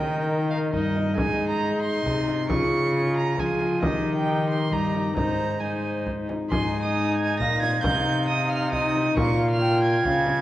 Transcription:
Already playing: cello D#3, harp D#3 A#3, viola D#4, recorder A#4, violin G5
0.29 harp A#3 D#4 D#5
0.50 violin F5
0.72 harp G2 A#3 D#4 D#5, cello G2, viola D#4, recorder A#4, violin D#5, frame drum
0.96 frame drum
1.15 harp G#2, cello G#2, viola D#4, recorder G#4, violin G#5, frame drum
1.49 violin A#5
1.61 harp G#3 D#4 D#5
1.82 violin C6
2.06 harp C3 G#3 D#4 D#5, cello C3, frame drum
2.28 frame drum
2.48 cello C#3, harp C#3, viola F4, recorder G#4, violin C#6, frame drum
2.94 harp G#3 F4 C#5
3.16 violin A#5
3.38 harp F3 G#3 F4 C#5, cello F3, viola F4, recorder G#4, violin G#5, frame drum
3.61 frame drum
3.82 harp D#3, cello D#3, viola D#4, recorder G4, violin D#5, frame drum
4.15 violin G5
4.27 harp D#4 A#4
4.49 violin C6
4.71 harp G2 D#4 A#4, cello G2, viola D#4, recorder G4, violin A#5, frame drum
4.94 frame drum
5.15 harp G#2, cello G#2, viola D#4, recorder C5, violin A#5, frame drum
5.60 harp G#3 D#4 C5, viola D#4, recorder C5, violin G#5
6.05 harp G#3 D#4 C5, frame drum
6.29 frame drum
6.47 cello G#2, harp G#2 G#3 D#4 C5, violin C6
6.51 viola D#4, recorder G#5, frame drum
6.83 violin D#6
7.16 violin G#6
7.39 harp A#2, cello A#2, recorder F5, violin A#6, frame drum
7.62 violin G#6, frame drum
7.81 harp C3 D#4 C5, cello C3, violin G6, frame drum
7.85 viola D#4
8.28 violin D#6
8.50 violin F6
8.70 harp D#4 C5, recorder D#5, violin D#6, frame drum
8.74 viola D#4
8.95 frame drum
9.12 harp A#2 A#3 F4 C#5
9.16 cello A#2, viola F4, recorder F5, violin C#6, frame drum
9.51 violin F6
9.61 recorder G5
9.83 violin G#6
10.05 harp C#3, cello C#3, recorder F5, frame drum
10.26 frame drum

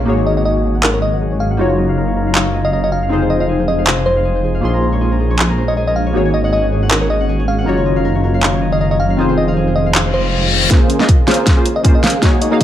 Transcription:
Already playing: ambient pad G#3, harp A#4 D#5, fm electric piano F5, downlifter
0.00 harp C#5
0.05 detuned saw bass G#1, ambient pad C#3 F#3 D#4, synth keys A#3 D#4 F#4 G#4 C#5, harp G#4
0.18 harp C#5
0.26 harp D#5, fm electric piano D#5
0.37 fm electric piano D#5, harp F#5
0.45 harp G#4, fm electric piano D#5
0.56 harp C#5
0.64 harp G#4
0.75 harp F#5
0.83 harp G#4, fm electric piano A#4, clap
0.94 fm electric piano A#4, harp C#5
1.02 fm electric piano D#5, harp D#5
1.13 harp F#5
1.21 harp G#4
1.32 harp C#5
1.40 harp G#4, fm electric piano F5
1.51 harp F#5
1.57 detuned saw bass F#1, ambient pad C#3, synth keys A#3 D#4 F4 F#4, harp A#4
1.61 synth keys C#5
1.70 harp C#5
1.78 harp D#5
1.89 harp F5
1.97 harp A#4
2.08 harp C#5
2.16 harp A#4
2.27 harp F5
2.35 harp A#4, clap
2.46 harp C#5
2.54 harp D#5
2.65 fm electric piano D#5, harp F5
2.73 harp A#4, fm electric piano D#5
2.84 harp C#5, fm electric piano D#5
2.92 harp A#4, fm electric piano F5
3.03 harp F5
3.09 detuned saw bass F1, ambient pad F3 G#3, synth keys C4 D#4 F4 G#4, harp G#4
3.13 synth keys C5
3.22 harp C5
3.30 fm electric piano D#5, harp D#5
3.40 fm electric piano D#5, harp F5
3.49 harp G#4
3.59 harp C5
3.68 harp G#4, fm electric piano D#5
3.78 harp F5
3.87 harp G#4, clap
3.98 harp C5
4.06 fm electric piano C5, harp D#5
4.17 harp F5
4.25 harp G#4
4.36 harp C5
4.44 harp G#4
4.54 harp F5
4.61 detuned saw bass A#1, synth keys A#3 C#4 F4 G#4, ambient pad A#3 C#4, harp G#4
4.65 synth keys C6
4.74 harp A#4
4.82 harp C5
4.93 harp C#5
5.01 harp G#4
5.12 harp A#4
5.20 harp G#4
5.31 harp C#5
5.39 harp G#4, clap
5.50 harp A#4
5.58 harp C5
5.68 harp C#5, fm electric piano D#5
5.77 harp G#4, fm electric piano D#5
5.87 harp A#4, fm electric piano D#5
5.96 harp G#4, fm electric piano F5
6.06 harp C#5
6.13 detuned saw bass G#1, ambient pad D#3 F#4, synth keys A#3 D#4 F#4 G#4, harp G#4
6.17 synth keys C#5
6.25 harp C#5
6.34 fm electric piano D#5, harp D#5
6.44 fm electric piano D#5, harp F#5
6.53 harp G#4, fm electric piano D#5
6.64 harp C#5
6.72 harp G#4
6.83 harp F#5
6.91 harp G#4, fm electric piano A#4, clap
7.01 fm electric piano A#4, harp C#5
7.10 harp D#5, fm electric piano D#5
7.20 harp F#5
7.29 harp G#4
7.39 harp C#5
7.48 harp G#4, fm electric piano F5
7.58 harp F#5
7.65 detuned saw bass F#1, ambient pad F#3 F5, synth keys A#3 D#4 F4 F#4, harp A#4
7.69 synth keys C#5
7.77 harp C#5
7.86 harp D#5
7.96 harp F5
8.05 harp A#4
8.15 harp C#5
8.24 harp A#4
8.34 harp F5
8.43 harp A#4, clap
8.53 harp C#5
8.62 harp D#5
8.72 fm electric piano D#5, harp F5
8.81 harp A#4, fm electric piano D#5
8.91 harp C#5, fm electric piano D#5
9.00 harp A#4, fm electric piano F5
9.10 harp F5
9.17 detuned saw bass F1, ambient pad G#3 C4 F4, synth keys C4 D#4 F4 G#4 C5, harp G#4
9.29 harp C5
9.38 fm electric piano D#5, harp D#5
9.48 fm electric piano D#5, harp F5
9.57 harp G#4
9.67 harp C5
9.76 harp G#4, fm electric piano D#5
9.86 harp F5
9.95 harp G#4, clap, reverse cymbal
10.05 harp C5
10.14 fm electric piano C5, harp D#5
10.24 harp F5
10.33 harp G#4
10.43 harp C5
10.52 harp G#4
10.62 harp F5
10.70 ambient pad C#3 A#3 G#4 C5, synth keys A#3 C#4 F4 G#4 C5, supersaw synth C#4 G#4 A#4 C5 F5, kick, snare, closed hi-hat, riser
10.90 closed hi-hat
10.99 synth keys A#3 C#4 F4 G#4 D#5, snare
11.09 kick, closed hi-hat
11.27 synth keys A#3 C#4 F4 G#4 C5, supersaw synth C#4 G#4 A#4 C5 F5, snare, closed hi-hat
11.31 closed hi-hat
11.34 closed hi-hat
11.47 kick, snare, closed hi-hat
11.56 synth keys A#3 C#4 F4 G#4 C5
11.66 closed hi-hat
11.76 fm electric piano D#5
11.84 synth keys A#3 C#4 F4 G#4 C5, supersaw synth C#4 G#4 A#4 C5 F5, kick, closed hi-hat
11.95 fm electric piano D#5
12.04 fm electric piano F5, snare, closed hi-hat
12.07 closed hi-hat
12.10 closed hi-hat
12.22 ambient pad D#3 G#3 C#4 F#4, synth keys A#3 D#4 F#4 G#4 C#5, supersaw synth D#4 F#4 G#4 C#5 G#5, kick, snare, closed hi-hat
12.42 fm electric piano D#5, closed hi-hat
12.51 synth keys A#3 D#4 F#4 G#4 F5, fm electric piano D#5
12.61 fm electric piano D#5

